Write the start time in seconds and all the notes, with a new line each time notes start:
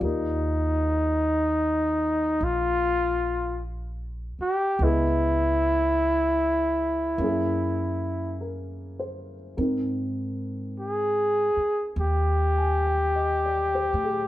Already playing: F5
0.00 D#2 D#4 F4 G4 A#4 D5
2.41 A#1 F4
4.39 G4, muted upright bass stroke
4.79 C#2 B3 E4 D#5
4.83 E4 G#4
7.18 F#2 A#3 C#4 E4
7.23 G#4
8.41 A#4
8.99 C5
9.57 G#2 C4 D#4 A#4
10.79 G#4
11.57 muted upright bass stroke
11.96 D#2
12.00 G4
12.58 G#5
12.87 G5
13.16 D#5
13.46 D5
13.75 C5
13.93 A2
14.04 G#4